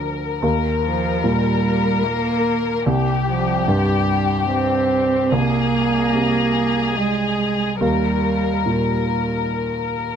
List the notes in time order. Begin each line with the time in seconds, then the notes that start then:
Already playing: D2 D3 A#4
0.42 D#2 A#4
0.83 F3
1.24 A#2 G3
2.05 A#3
2.86 C2 G4
3.26 F3
3.68 G2 G3
4.50 C4
5.32 C2 A#3 G#4
6.14 C3
6.98 G#3
7.81 D#2 G3 A#4
8.66 A#2